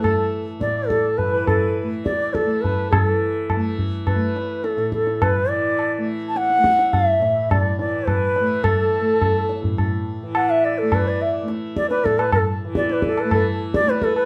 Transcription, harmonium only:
\new Staff \with { instrumentName = "Harmonium" } { \time 5/4 \tempo 4 = 105 a'16 a'8 r8 d''8 a'8 b'4 r8 d''8 a'8.~ | a'16 r1 r8. | r1 r4 | r16 a'4. r4. fis''16 e''16 d''8 b'16 d''8 |
r8. d''8 a'8 a'16 r8 d''8 a'16 b'16 a'16 r8 d''16 b'8 | }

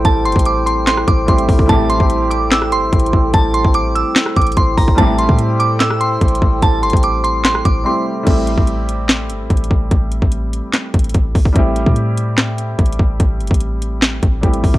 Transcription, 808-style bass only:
\new Staff \with { instrumentName = "808-style bass" } { \clef bass \time 4/4 \key a \minor \tempo 4 = 146 a,,8 g,,16 a,,4.~ a,,16 a,,8 a,,8 a,,8 | a,,8. a,,4.~ a,,16 g,,16 a,,16 a,,8 a,,8 | a,,8. a,,4 r8. a,,8 a,,8 a,,8 | a,,8. a,2~ a,16 a,,8 a,,8 |
a,,8 g,,16 a,,4.~ a,,16 a,,8 r4 | a,,8. a,,4.~ a,,16 g,,16 a,,16 a,,8 a,,8 | a,,8. a,,4 r8. a,,8 a,,8 a,,8 | a,,8. a,2~ a,16 a,,8 a,,8 |
a,,8 g,,16 a,,4.~ a,,16 a,,8 a,,8 a,,8 | }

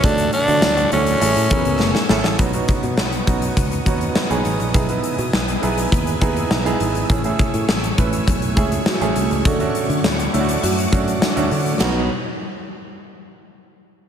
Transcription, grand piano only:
\new Staff \with { instrumentName = "Grand piano" } { \time 4/4 \key b \mixolydian \tempo 4 = 102 <a cis' d' fis' a'>8 r16 <a d' fis' a' cis''>8 r16 <a cis' d' fis' a'>16 r16 <a cis' e' gis' a'>16 r16 <a cis' e' gis' ais' b'>8. r16 <a cis' e' gis' a'>16 r16 | <b cis' dis' fis'>16 <b cis' dis' fis'>4 r16 <b cis' dis' fis'>8. r16 <b cis' dis' fis'>8 r16 <b cis' dis' gis'>8 r16 | <b dis' e' gis'>16 <b dis' e' b'>4 r16 <b dis' e' gis'>8. r16 <b dis' e' gis'>8 r16 <b dis' e' gis'>8 r16 | <a cis' e' gis'>16 <a cis' e' gis'>4 r16 <a cis' e' b'>8. r16 <a cis' e' gis'>8 r16 <a cis' e' gis'>8 r16 |
<a cis' d' fis'>16 <a cis' d' fis'>4 r16 <a cis' d' e' fis'>8. r16 <a cis' d' fis'>8 r16 <a cis' d' fis'>8 r16 | <b cis' dis' fis'>8 r2. r8 | }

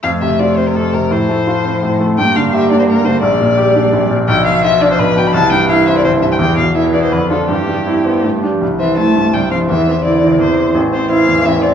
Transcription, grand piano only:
\new Staff \with { instrumentName = "Grand piano" } { \clef bass \time 3/4 \key f \major \tempo 4 = 169 f,8 c8 f'8 c'8 f,8 c8 | a,8 a8 f'8 c'8 a,8 a8 | g,8 d8 g'8 d'8 g,8 d8 | bes,,8 bes,8 g'8 d'8 bes,,8 bes,8 |
\key c \major b,,8 b,8 f'8 d'8 b,,8 b,8 | c,8 g,8 e'8 c'8 c,8 g,8 | e,8 b,8 e'8 b8 f,8 <d' f'>8 | g,8 g8 e'8 c'8 g,8 <d' g'>8 |
c,8 c'8 e'8 g,8 c,8 c'8 | e,8 c'8 e'8 e8 e,8 c'8 | a,,8 c'8 e'8 e,8 a,,8 c'8 | }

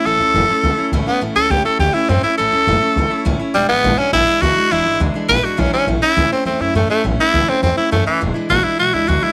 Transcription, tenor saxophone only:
\new Staff \with { instrumentName = "Tenor saxophone" } { \time 4/4 \key a \major \tempo 4 = 206 a'2. r8 b8 | r8 a'8 g'8 a'8 g'8 e'8 c'8 e'8 | a'2. r4 | g8 b4 cis'8 e'4 fis'4 |
e'4 r4 b'8 fis'8 cis'8 cis'8 | r8 e'4 c'8 c'8 e'8 a8 a8 | r8 e'4 c'8 c'8 e'8 a8 e8 | r4 fis'8 e'8 fis'8 e'8 fis'8 e'8 | }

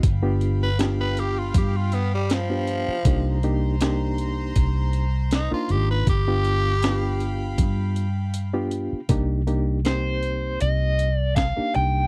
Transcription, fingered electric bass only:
\new Staff \with { instrumentName = "Fingered electric bass" } { \clef bass \time 4/4 \key c \minor \tempo 4 = 80 g,,2 g,4.~ g,16 r16 | c,2 c,4~ c,16 r16 aes,,8 | g,,2 g,4.~ g,16 r16 | c,2 c,4~ c,16 r16 c,8 | }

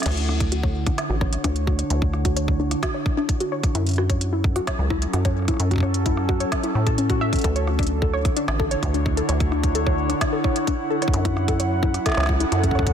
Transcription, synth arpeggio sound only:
\new Staff \with { instrumentName = "Synth arpeggio sound" } { \time 4/4 \key d \major \tempo 4 = 130 cis''16 r16 d'16 r16 fis'16 cis''16 r16 d'16 r16 fis'16 cis''16 r16 d'16 r16 fis'16 cis''16 | r16 d'16 r16 fis'16 cis''16 r16 d'16 r16 fis'16 cis''16 r16 d'16 r16 fis'16 cis''16 r16 | e'16 r16 fis'16 cis''16 r16 e'16 r16 fis'16 cis''16 r16 e'16 r16 fis'16 cis''16 r16 e'16 | r16 fis'16 cis''16 r16 e'16 r16 fis'16 cis''16 r16 e'16 r16 a'16 cis'16 fis'16 e''16 r16 |
a'16 cis''16 r16 d'16 r16 a'16 cis''16 r16 d'16 r16 a'16 cis''16 r16 d'16 r16 a'16 | cis''16 r16 d'16 r16 a'16 cis''16 r16 d'16 r16 a'16 cis''16 r16 d'16 r16 a'16 cis''16 | r16 e'16 r16 a'16 cis''16 r16 e'16 r16 a'16 cis''16 r16 e'16 r16 a'16 cis''16 r16 | }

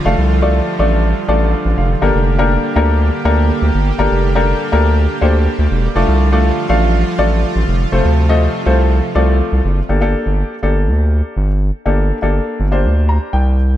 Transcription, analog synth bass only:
\new Staff \with { instrumentName = "Analog synth bass" } { \clef bass \time 4/4 \key g \minor \tempo 4 = 122 f,,16 c,4~ c,16 a,,4 a,,8. a,,16 f,,8 | g,,16 f,,4~ f,,16 d,4 d,8. d,16 g,,8 | g,,16 f,,4~ f,,16 d,4 d,8. d,16 e,,8 | f,,16 c,4~ c,16 a,,4 a,,8. a,,16 f,,8 |
f,,16 d,4~ d,16 c,4 c,8. c,16 fis,,8 | g,,8. g,,8 r16 g,,8 d,4 g,,4 | g,,8. g,,8 r16 g,,8 d,4 c,4 | }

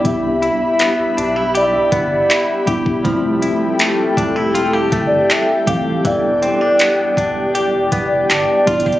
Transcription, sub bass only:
\new Staff \with { instrumentName = "Sub bass" } { \clef bass \time 4/4 \key c \major \tempo 4 = 80 c,8. b,,16 r16 b,,16 b,,4 g,,8 r8 e,,8 | f,,8. e,,16 r16 e,,16 e,,4 g,,8 r8 d,,8 | e,,8. e,,16 r16 e,,16 e,,8 d,,16 e,,16 r16 f,,16 g,,16 r16 a,,16 g,,16 | }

